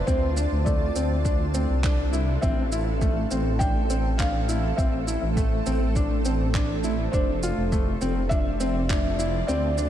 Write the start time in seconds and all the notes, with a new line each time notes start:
Already playing: F4 C5 D5 A5
0.06 D2 C4 D4 C5, kick, shaker
0.25 A4
0.37 D4, shaker
0.51 D2
0.65 A3 D5, kick, shaker
0.96 D2 C4 F5, shaker
1.25 D4, kick, shaker
1.54 D2 C4, shaker
1.69 C2
1.84 D4, kick, clap, shaker
2.13 E4, shaker
2.41 A1 A3 C4 E5, kick, shaker
2.72 E4, shaker
3.01 A3, kick, shaker
3.31 A1 C4, shaker
3.59 D4 G5, kick, shaker
3.90 C4, shaker
4.18 D4 F5, kick, clap, shaker
4.49 E4, shaker
4.77 A1 C4 E5, kick, shaker
5.07 E4, shaker
5.22 A1
5.37 A3, kick, shaker
5.66 A1 C4, shaker
5.96 D4, kick, shaker
6.25 C4, shaker
6.55 D4, kick, clap, shaker
6.84 E4, shaker
7.12 F1 D4 F4 C5, kick, shaker
7.21 C5
7.26 D5
7.43 F4, shaker
7.57 F1
7.72 A3, kick, shaker
8.01 F1 C4, shaker
8.19 A5
8.29 D4 E5, kick, shaker
8.60 C4, shaker
8.90 D4, kick, clap, shaker
9.19 E4, shaker
9.47 D2 C4 D4 D5, shaker
9.55 A4
9.78 D4 F5, shaker